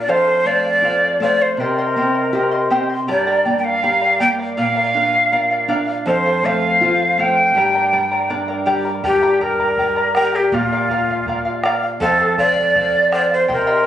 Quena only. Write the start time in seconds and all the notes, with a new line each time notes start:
0.01 D5
0.09 C5
0.47 D5
1.22 D5
1.42 C5
1.51 C5
1.60 A#4
3.10 D5
3.58 G5
3.64 F5
4.21 G5
4.58 F5
6.08 C5
6.46 F5
7.20 G5
9.06 G4
9.42 A#4
10.15 A#4
10.36 G4
10.54 F4
12.01 A4
12.39 D5
13.13 D5
13.34 C5
13.53 A#4